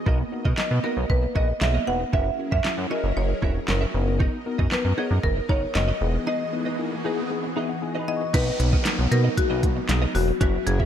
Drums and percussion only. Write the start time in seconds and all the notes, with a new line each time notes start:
0.06 kick
0.45 kick
0.58 snare, clap
1.10 kick
1.35 kick
1.61 snare, clap
2.13 kick
2.52 kick
2.65 snare, clap
3.42 kick
3.68 snare, clap
4.20 kick
4.59 kick
4.72 snare, clap
5.24 kick
5.49 kick
5.75 snare, clap
8.34 kick, closed hi-hat, crash
8.60 closed hi-hat
8.73 kick
8.85 snare, clap, closed hi-hat
9.12 closed hi-hat
9.37 kick, closed hi-hat
9.63 kick, closed hi-hat
9.89 snare, clap, closed hi-hat
10.15 open hi-hat
10.41 kick, closed hi-hat
10.67 closed hi-hat
10.80 kick